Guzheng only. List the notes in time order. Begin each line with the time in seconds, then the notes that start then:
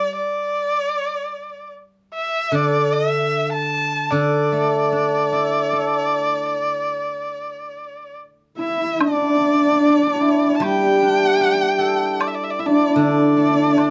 Already playing: G3
2.52 D3
4.11 D3
4.52 A3
4.92 D4
5.32 E4
5.73 A4
10.60 G3
11.02 D4
11.40 G4
11.79 A4
12.96 D3
13.37 A3
13.77 D4